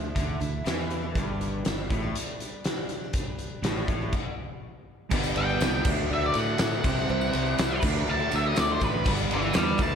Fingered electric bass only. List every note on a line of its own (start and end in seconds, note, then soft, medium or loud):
0.00 0.14 D2 medium
0.16 0.39 D2 medium
0.41 0.64 D2 medium
0.66 1.12 E2 medium
1.15 1.61 G1 medium
1.66 1.89 G1 medium
1.90 2.13 A1 medium
3.62 3.86 A1 medium
3.88 4.11 A1 medium
5.12 5.32 G1 loud
5.36 5.56 G1 medium
5.61 5.81 C2 loud
5.85 6.06 D2 loud
6.10 6.30 D2 medium
6.35 6.55 A2 medium
6.60 6.80 A2 medium
6.84 7.04 C2 medium
7.10 7.29 C2 loud
7.34 7.54 C2 medium
7.59 7.79 C2 loud
7.83 8.03 D2 loud
8.08 8.28 D2 medium
8.33 8.53 D2 medium
8.57 8.77 D2 medium
8.82 9.08 A1 loud
9.06 9.26 G1 medium
9.31 9.50 G1 loud
9.56 9.76 E2 loud
9.80 9.95 D2 loud